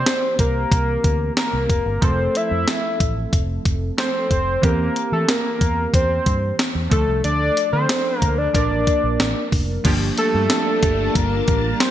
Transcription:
0.00 1.98 E3 medium
0.00 1.98 A#3 medium
0.00 1.98 C4 medium
0.00 1.99 G4 medium
0.00 0.36 C5 loud
0.06 snare loud
0.06 closed hi-hat medium
0.39 0.64 C2 medium
0.39 1.33 A#4 medium
0.39 kick medium
0.39 closed hi-hat medium
0.71 0.96 C2 medium
0.71 kick medium
0.71 closed hi-hat medium
1.04 1.29 D2 medium
1.04 kick medium
1.04 closed hi-hat medium
1.37 2.05 A#4 medium
1.37 snare loud
1.37 closed hi-hat medium
1.53 1.66 C2 medium
1.69 1.82 F1 medium
1.69 kick medium
1.69 closed hi-hat medium
1.86 1.98 G1 medium
2.01 2.27 F1 loud
2.01 3.93 F3 medium
2.01 3.94 A3 medium
2.01 3.94 C4 medium
2.01 3.95 A4 medium
2.01 2.38 C5 loud
2.01 kick loud
2.01 closed hi-hat medium
2.35 3.34 E5 medium
2.35 closed hi-hat medium
2.51 2.63 F2 loud
2.68 snare loud
2.68 closed hi-hat medium
3.00 3.25 A1 medium
3.00 kick medium
3.00 closed hi-hat medium
3.33 3.57 F1 medium
3.33 kick medium
3.33 closed hi-hat medium
3.65 3.90 F1 medium
3.65 kick medium
3.65 closed hi-hat medium
3.97 4.63 F3 soft
3.97 4.63 A3 soft
3.97 4.62 C4 soft
3.97 4.64 A4 medium
3.97 4.66 C5 loud
3.97 snare loud
3.97 closed hi-hat medium
4.31 4.55 F1 medium
4.31 kick medium
4.31 closed hi-hat medium
4.62 4.88 E2 loud
4.62 6.87 E3 medium
4.62 6.87 A#3 medium
4.62 6.88 C4 medium
4.62 6.88 G4 medium
4.62 5.12 A#4 loud
4.62 kick loud
4.62 closed hi-hat medium
4.96 closed hi-hat medium
5.12 5.24 E3 medium
5.12 5.31 A4 medium
5.29 5.94 A#4 loud
5.29 snare loud
5.29 closed hi-hat medium
5.61 5.85 E2 medium
5.61 kick medium
5.61 closed hi-hat medium
5.94 6.18 E2 medium
5.94 6.55 C5 medium
5.94 kick medium
5.94 closed hi-hat medium
6.26 6.51 G2 medium
6.26 kick medium
6.26 closed hi-hat medium
6.59 snare loud
6.59 closed hi-hat medium
6.75 6.87 E2 medium
6.90 7.04 D2 medium
6.90 8.50 F3 medium
6.90 8.51 A3 medium
6.90 8.51 D4 medium
6.90 7.22 A4 medium
6.90 8.52 A4 medium
6.90 kick loud
6.90 closed hi-hat medium
7.08 7.20 C2 medium
7.24 7.49 D2 loud
7.24 7.70 D5 loud
7.24 closed hi-hat medium
7.57 closed hi-hat medium
7.73 7.85 D3 medium
7.73 8.20 C5 loud
7.89 snare loud
7.89 closed hi-hat medium
8.20 8.46 D2 medium
8.20 8.40 A#4 loud
8.20 kick medium
8.20 closed hi-hat medium
8.38 8.54 D5 medium
8.53 8.67 A#1 medium
8.53 9.82 F3 medium
8.53 9.82 A#3 medium
8.53 9.83 D4 medium
8.53 9.83 A#4 medium
8.53 9.48 D5 medium
8.53 kick medium
8.53 closed hi-hat medium
8.71 8.83 A1 medium
8.87 kick medium
8.87 closed hi-hat medium
9.04 9.16 A#1 medium
9.20 9.32 A1 medium
9.20 snare loud
9.20 closed hi-hat medium
9.52 9.77 F1 medium
9.52 kick medium
9.52 open hi-hat medium
9.84 10.09 G1 loud
9.84 11.91 F3 medium
9.84 11.91 G3 medium
9.84 11.91 A#3 medium
9.84 11.91 D4 medium
9.84 11.91 F4 medium
9.84 11.91 G4 medium
9.84 11.91 A5 medium
9.84 kick loud
9.84 closed hi-hat medium
9.84 crash medium
10.18 11.17 A4 medium
10.18 closed hi-hat medium
10.35 10.46 G2 medium
10.50 snare loud
10.50 closed hi-hat medium
10.83 11.07 G1 medium
10.83 kick medium
10.83 closed hi-hat medium
11.15 11.40 G1 loud
11.15 11.82 A#4 medium
11.15 kick medium
11.15 closed hi-hat medium
11.48 11.72 A1 medium
11.48 kick medium
11.48 closed hi-hat medium
11.80 11.91 C5 medium
11.80 snare loud
11.80 closed hi-hat loud

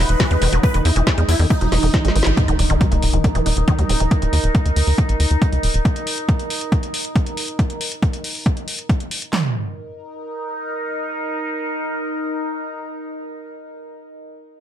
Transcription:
0.00 2.36 D#4 medium
0.00 0.55 B4 loud
0.09 0.15 E1 medium
0.09 closed hi-hat medium
0.20 0.23 E3 loud
0.20 kick loud
0.20 snare loud
0.20 closed hi-hat medium
0.31 0.37 E2 medium
0.31 0.37 G#3 medium
0.31 closed hi-hat medium
0.42 0.48 E1 loud
0.42 0.50 D#3 medium
0.42 open hi-hat loud
0.52 0.59 E1 medium
0.52 0.58 F#3 medium
0.52 closed hi-hat medium
0.63 0.77 B4 loud
0.63 kick loud
0.63 closed hi-hat medium
0.74 0.81 E1 medium
0.74 0.83 D#3 medium
0.74 closed hi-hat medium
0.85 0.92 E2 loud
0.85 0.89 E4 medium
0.85 open hi-hat loud
0.96 1.02 E1 loud
0.96 1.02 E3 medium
0.96 closed hi-hat medium
1.07 1.10 E3 loud
1.07 kick loud
1.07 snare loud
1.07 closed hi-hat medium
1.18 1.24 E2 medium
1.18 1.24 G#3 medium
1.18 closed hi-hat medium
1.29 1.35 E2 loud
1.29 1.38 E4 medium
1.29 open hi-hat loud
1.39 1.46 E2 medium
1.39 1.45 D#3 medium
1.39 open hi-hat medium
1.50 2.29 D#4 loud
1.50 1.59 E4 medium
1.50 kick loud
1.50 closed hi-hat medium
1.61 1.68 E1 medium
1.61 1.67 F#3 medium
1.61 closed hi-hat medium
1.72 1.79 E1 loud
1.72 1.81 E3 medium
1.72 snare medium
1.72 open hi-hat loud
1.83 1.89 E1 medium
1.83 1.89 D#3 medium
1.83 open hi-hat medium
1.94 2.03 E3 medium
1.94 kick loud
1.94 snare medium
1.94 closed hi-hat medium
2.05 2.11 G#1 medium
2.05 2.11 G#3 medium
2.05 snare medium
2.05 closed hi-hat medium
2.16 2.22 G#1 loud
2.16 2.21 E3 medium
2.16 open hi-hat loud
2.23 2.33 G#1 medium
2.23 2.35 E3 medium
2.23 snare loud
2.23 closed hi-hat medium
2.37 7.63 D#4 medium
2.37 7.63 A#4 medium
2.37 kick loud
2.37 closed hi-hat medium
2.37 impact medium
2.48 2.55 D#1 medium
2.48 2.54 D#3 loud
2.48 closed hi-hat medium
2.59 2.66 D#1 loud
2.59 2.63 D#4 medium
2.59 open hi-hat loud
2.70 2.76 D#1 medium
2.70 2.76 D#3 loud
2.70 closed hi-hat medium
2.81 2.90 G3 medium
2.81 kick loud
2.81 closed hi-hat medium
2.92 2.98 D#1 medium
2.92 2.97 A#3 medium
2.92 closed hi-hat medium
3.02 3.09 D#1 loud
3.02 open hi-hat loud
3.13 3.20 D#1 medium
3.13 3.19 E3 medium
3.13 closed hi-hat medium
3.24 3.30 D#3 medium
3.24 kick loud
3.24 closed hi-hat medium
3.35 3.42 D#1 medium
3.35 3.41 E3 loud
3.35 closed hi-hat medium
3.46 3.52 D#1 loud
3.46 3.49 D#4 medium
3.46 open hi-hat loud
3.57 3.63 D#1 medium
3.57 closed hi-hat medium
3.68 3.71 D#3 loud
3.68 kick loud
3.68 closed hi-hat medium
3.79 3.85 D#2 medium
3.79 3.84 G3 medium
3.79 closed hi-hat medium
3.89 3.96 D#1 loud
3.89 3.98 C#3 medium
3.89 open hi-hat loud
4.00 4.07 D#1 medium
4.00 4.06 E3 medium
4.00 closed hi-hat medium
4.11 kick loud
4.11 closed hi-hat medium
4.22 4.29 D#1 medium
4.22 closed hi-hat medium
4.33 4.39 D#2 loud
4.33 open hi-hat loud
4.44 4.50 D#1 medium
4.44 closed hi-hat medium
4.55 kick loud
4.55 closed hi-hat medium
4.66 4.72 D#2 medium
4.66 closed hi-hat medium
4.76 4.83 D#2 loud
4.76 open hi-hat loud
4.87 4.94 D#2 medium
4.87 open hi-hat medium
4.98 kick loud
4.98 closed hi-hat medium
5.09 5.16 A#1 medium
5.09 closed hi-hat medium
5.20 5.26 D#2 loud
5.20 open hi-hat loud
5.31 5.37 D#2 medium
5.31 closed hi-hat soft
5.42 kick loud
5.42 closed hi-hat medium
5.53 5.59 C#2 medium
5.53 closed hi-hat medium
5.63 5.70 D#1 loud
5.63 open hi-hat loud
5.74 5.81 D#1 medium
5.74 closed hi-hat medium
5.85 kick loud
5.85 closed hi-hat medium
5.96 closed hi-hat soft
6.07 open hi-hat loud
6.18 closed hi-hat medium
6.29 kick loud
6.29 closed hi-hat medium
6.40 closed hi-hat soft
6.50 open hi-hat loud
6.61 closed hi-hat medium
6.72 kick loud
6.72 closed hi-hat medium
6.83 closed hi-hat medium
6.94 open hi-hat loud
7.05 closed hi-hat medium
7.16 kick loud
7.16 closed hi-hat medium
7.26 closed hi-hat medium
7.37 open hi-hat loud
7.48 closed hi-hat soft
7.59 kick loud
7.59 closed hi-hat medium
7.70 closed hi-hat medium
7.81 open hi-hat loud
7.92 closed hi-hat medium
8.03 kick loud
8.03 closed hi-hat medium
8.13 closed hi-hat medium
8.24 open hi-hat loud
8.35 open hi-hat medium
8.46 kick loud
8.46 closed hi-hat medium
8.57 closed hi-hat soft
8.68 open hi-hat loud
8.79 closed hi-hat soft
8.89 kick loud
8.89 closed hi-hat medium
9.00 closed hi-hat soft
9.11 open hi-hat loud
9.22 closed hi-hat soft
9.33 13.49 D#4 medium
9.33 13.49 A#4 medium
9.33 snare loud
9.33 clap medium
9.33 floor tom loud

